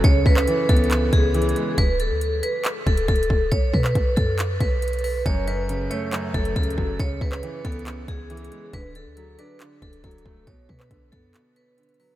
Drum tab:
HH |x-----------------------x-----------x---x---x---x-----------x-----------x---x---x---x-----------|x-----------x-----------x-----------x-----------x-----------x-----x-----x---x---x---------------|x-----------------------x-----------x-----------x-----------x-----------x--x--x--x--o-----------|x-----------x-----------x-----------x-----------x-----------x-----x-----x---x---x---------------|
CP |------------------x-----------------------------x-----------------------------------------------|------------------------------------------------x-----------------------------------------------|------------------x-----------------------------x-----------------------------------------------|------------------------------------------------x-----------------------------------------------|
SD |------------------r-----------------------------------------------------------------------------|------------------------------------------------------------------------------------------------|------------------r-----------------------------------------------------------------------------|------------------------------------------------------------------------------------------------|
BD |o-----------o-----------------------o-----------------------o-----------------------------------|o-----------------------------------------------------------o-----------o-----------o-----------|o-----------o-----------o-----------o-----------------------o-----------------------------------|o-----------------------------------------------------------o-----------o-----------o-----------|

HH |x-----------------------x-----------x---x---x---x-----------x-----------x---x---x---x-----------|x-----------x-----------x-----------x-----------x-----------x-----x-----x---x---x---------------|x-----------------------x-----------x-----------x-----------x-----------x--x--x--x--o-----------|
CP |------------------x-----------------------------x-----------------------------------------------|------------------------------------------------x-----------------------------------------------|------------------x-----------------------------x-----------------------------------------------|
SD |------------------r-----------------------------------------------------------------------------|------------------------------------------------------------------------------------------------|------------------r-----------------------------------------------------------------------------|
BD |o-----------o-----------------------o-----------------------o-----------------------------------|o-----------------------------------------------------------o-----------o-----------o-----------|o-----------o-----------o-----------o-----------------------------------------------------------|